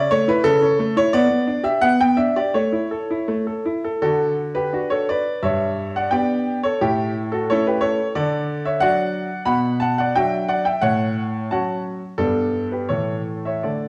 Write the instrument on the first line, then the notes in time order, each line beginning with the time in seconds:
grand piano
Already playing: C#4 D5
0.11 A3 C#5
0.28 E4 B4
0.44 C#3 A4
0.62 C#4
0.79 A3
0.97 E4 C#5
1.13 B3 D5
1.47 D4
1.64 G4 E5
1.82 B3 F#5
2.01 B3 G5
2.17 D4 E5
2.36 G4 D5
2.54 A3 C#5
2.72 E4
2.91 A4
3.10 E4
3.28 A3
3.47 A4
3.65 E4
3.84 A4
4.02 D3 F#4 A4
4.55 G4 B4
4.73 D4 F#4
4.90 A4 C#5
5.09 B4 D5
5.43 G2 C#5 E5
5.96 D5 F#5
6.11 B3 D4 G4 D5 G5
6.64 A4 C#5
6.82 A2 E4 G4
7.32 F#4 A4
7.50 A3 C#4 E4 A4 C#5
7.67 G4 B4
7.81 A4 C#5
8.15 D3 A4 D5
8.66 C#5 E5
8.81 F#3 D4 F#4 D5 F#5
9.46 B2 F#5 B5
9.80 F#5 A5
9.98 D5 F#5
10.15 F#3 D4 F#4 E5 G5
10.49 D5 F#5
10.65 E5 G5
10.82 A2 C#5 F#5
11.51 F#3 C#4 F#4 F#5 A5
12.18 G2 G3 B3 D4 A4
12.72 G4 B4
12.89 A2 E3 A3 A4 C#5
13.45 C#5 E5
13.63 D3 A3 A4 D5